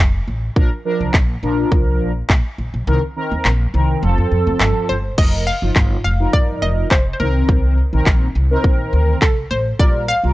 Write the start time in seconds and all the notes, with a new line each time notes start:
0.00 F1
0.28 A1
0.56 A#1 F3 D4 A#4, kick
0.85 F3 D4 A#4
1.01 C2
1.14 A#1, kick, clap
1.43 A#1 F3 D4 A#4
1.72 C2, kick
2.01 A#1
2.30 A#2, kick, clap
2.58 A#1
2.74 A#1
2.87 C2 D#3 C4 A#4
3.16 D#3 C4 A#4
3.31 D#2
3.45 A#1, clap
3.74 C2 D#3 C4 A#4
4.02 F1 F3 C4 A4
4.18 F2
4.32 F2
4.47 F1
4.60 G1 A4, clap
4.89 G1 C5
5.18 F1 F3 D#4 A#4 D#5, kick, crash
5.47 F5
5.62 G1 F3 D#4 F4
5.76 G1, kick, clap
6.04 F1 F5
6.20 F3 D#4 A#4
6.33 G1 D5, kick
6.62 F1 D#5
6.91 F1 C5, kick, clap
7.13 C5
7.20 C2 D#3 C4 A#4
7.49 C2, kick
7.93 A#1 D#3 C4 A#4
8.06 A#1, kick, clap
8.35 C2
8.50 D#3 C4 A#4
8.64 A#1, kick
8.93 D2
9.22 C2 A4, kick, clap
9.51 A1 C5
9.79 A#1 G3 F4 A#4 D5, kick
10.08 F5
10.23 C2 G3 F4 A#4